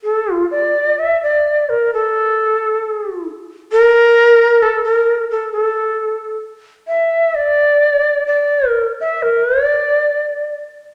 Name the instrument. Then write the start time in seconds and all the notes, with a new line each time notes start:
shakuhachi
0.03 A4
0.32 F4
0.51 D5
0.99 E5
1.23 D5
1.69 A#4
1.94 A4
3.72 A#4
4.62 A4
4.84 A#4
5.31 A4
5.52 A4
6.87 E5
7.35 D5
8.27 D5
8.71 A#4
9.00 E5
9.22 A#4
9.66 D5